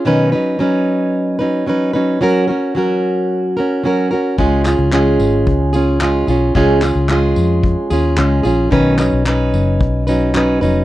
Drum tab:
TB |--------|--------|-x-x-x-x|-x-x-x-x|
CP |--------|--------|-xx---x-|-xx---x-|
BD |--------|--------|o---o---|o---o---|

TB |-x-x-x-x|
CP |-xx---x-|
BD |o---o---|